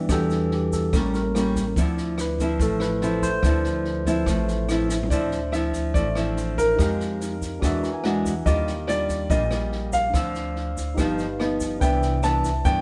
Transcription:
Already playing: tine electric piano E3 B3 D4 D5 E5 G5
0.09 upright bass E2, nylon-string guitar E3 B3 D4 G4, tine electric piano G3 D4 F#4 A4, kick, cross-stick, snare, shaker
0.30 snare, shaker
0.51 tine electric piano G4, snare
0.72 tine electric piano A4, kick, snare, shaker
0.93 upright bass A1, nylon-string guitar A2 G3 A#3 C#4, tine electric piano G3 A#3 C#4 A#4, kick, cross-stick, snare, shaker
1.14 tine electric piano A#4, snare, shaker
1.35 nylon-string guitar G3 A#3 C#4, cross-stick, snare, shaker
1.56 kick, snare, shaker
1.76 upright bass D2, nylon-string guitar D3 F3 C4 E4, tine electric piano F3 C4 E4, kick, snare, shaker
1.97 snare, shaker
2.18 tine electric piano B4, cross-stick, snare, shaker
2.39 nylon-string guitar F3 C4 E4, kick, snare, shaker
2.59 upright bass A1, nylon-string guitar A2, tine electric piano A4, kick, snare, shaker
2.80 tine electric piano B4, cross-stick, snare, shaker
3.01 nylon-string guitar F3 C4 E4, tine electric piano C5, snare, shaker
3.22 tine electric piano C5, kick, snare, shaker
3.43 upright bass D2, nylon-string guitar D3 F3 C4 E4, kick, cross-stick, snare, shaker
3.64 snare, shaker
3.84 snare
4.06 tine electric piano F3 C4 E4, nylon-string guitar F3 C4 E4, kick, snare, shaker
4.26 upright bass A1, nylon-string guitar A2, kick, cross-stick, snare, shaker
4.48 snare, shaker
4.69 nylon-string guitar F3 C4 E4, cross-stick, snare, shaker
4.89 snare, shaker
5.03 floor tom
5.08 upright bass D2, nylon-string guitar D3, tine electric piano D4, grand piano D5, kick, snare, shaker
5.12 nylon-string guitar F3 C4 E4, tine electric piano C5 E5
5.31 snare, shaker
5.52 nylon-string guitar F3 C4 E4, grand piano E5, cross-stick, snare, shaker
5.73 kick, snare, shaker
5.94 upright bass A1, nylon-string guitar A2 F3 C4 E4, grand piano D5, kick, snare, shaker
6.15 nylon-string guitar F3 C4 E4, cross-stick, snare, shaker
6.36 tine electric piano D4 C5 E5, snare, shaker
6.58 grand piano A#4, kick, snare, shaker
6.76 upright bass F2, nylon-string guitar F3 G#3 D#4, tine electric piano D#4 G4, kick, cross-stick, snare, shaker
6.80 nylon-string guitar G4, tine electric piano F5
7.00 snare, shaker
7.20 snare, shaker
7.41 kick, snare, shaker
7.60 upright bass E2, nylon-string guitar E3, tine electric piano D4 F#4, kick, cross-stick, snare, shaker
7.64 nylon-string guitar G#3 D4 F#4, tine electric piano G#4 E5
7.83 tine electric piano A#5, snare, shaker
7.94 tine electric piano G#5
8.04 nylon-string guitar G#3 D4 F#4, tine electric piano F#5, cross-stick, snare
8.25 kick, snare, shaker
8.45 upright bass D#2, nylon-string guitar D#3 G3 D4 F4, tine electric piano G4 D6, grand piano D#5, kick, snare, shaker
8.49 tine electric piano F5
8.67 snare, shaker
8.87 nylon-string guitar G3 D4 F4, grand piano D5, cross-stick, snare, shaker
9.09 kick, snare, shaker
9.30 upright bass A#1, nylon-string guitar A#2 G3 D4 F4, grand piano D#5, kick, snare, shaker
9.51 nylon-string guitar G3 F4, cross-stick, snare, shaker
9.72 snare
9.93 grand piano F5, kick, snare, shaker
10.10 upright bass D2, tine electric piano D4 C5, kick, cross-stick, snare
10.15 nylon-string guitar D3 F3 C4, tine electric piano E6, shaker
10.35 snare, shaker
10.56 snare
10.77 kick, snare, shaker
10.95 upright bass G1, nylon-string guitar G2, tine electric piano D#4 G4 B4, kick, cross-stick, snare, shaker
10.99 nylon-string guitar F3 B3 D#4, tine electric piano F5
11.18 snare, shaker
11.40 nylon-string guitar F3 B3 D#4, cross-stick, snare
11.60 kick, snare, shaker
11.78 upright bass C2, nylon-string guitar C3 E3, tine electric piano D4 B4, grand piano G5, kick, snare, shaker
11.82 nylon-string guitar B3 D4, tine electric piano C4 E5
12.02 snare, shaker
12.23 nylon-string guitar E3 B3 D4, grand piano A5, cross-stick, snare, shaker
12.44 kick, snare, shaker
12.65 nylon-string guitar G2 E3 B3 D4, upright bass G2, grand piano G5, kick, snare, shaker

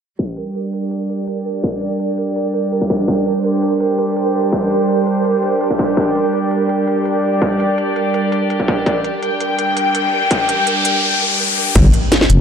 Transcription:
0.19 string section G3, synth texture A#4, kick, closed hi-hat
0.31 string section G4
0.37 closed hi-hat
0.47 string section D4
0.54 string section D5, closed hi-hat
0.73 closed hi-hat
0.91 closed hi-hat
1.10 closed hi-hat
1.28 closed hi-hat
1.64 kick, closed hi-hat
1.82 closed hi-hat
2.00 closed hi-hat
2.18 closed hi-hat
2.36 closed hi-hat
2.54 closed hi-hat
2.72 closed hi-hat
2.82 kick
2.90 kick
3.08 kick, closed hi-hat
3.26 closed hi-hat
3.43 string section C5, closed hi-hat
3.62 closed hi-hat
3.80 closed hi-hat
3.98 closed hi-hat
4.16 closed hi-hat
4.52 kick, closed hi-hat
4.71 closed hi-hat
4.89 closed hi-hat
5.07 closed hi-hat
5.25 closed hi-hat
5.43 closed hi-hat
5.61 closed hi-hat
5.71 kick
5.79 kick
5.97 kick, closed hi-hat
6.15 closed hi-hat
6.32 string section D5, closed hi-hat
6.51 closed hi-hat
6.69 closed hi-hat
6.87 closed hi-hat
7.05 closed hi-hat
7.42 kick, closed hi-hat
7.60 closed hi-hat
7.78 closed hi-hat
7.96 closed hi-hat
8.14 closed hi-hat
8.32 closed hi-hat
8.50 closed hi-hat
8.60 kick
8.68 kick
8.86 kick, closed hi-hat, riser
9.04 closed hi-hat
9.21 string section G5, closed hi-hat
9.40 closed hi-hat
9.59 closed hi-hat
9.77 closed hi-hat
9.95 closed hi-hat
10.31 kick, closed hi-hat
10.49 closed hi-hat
10.67 closed hi-hat
10.85 closed hi-hat
11.75 wobble bass G1, kick, closed hi-hat, crash, impact
11.94 closed hi-hat
12.12 snare, closed hi-hat
12.21 snare
12.30 wobble bass F1, closed hi-hat, shaker

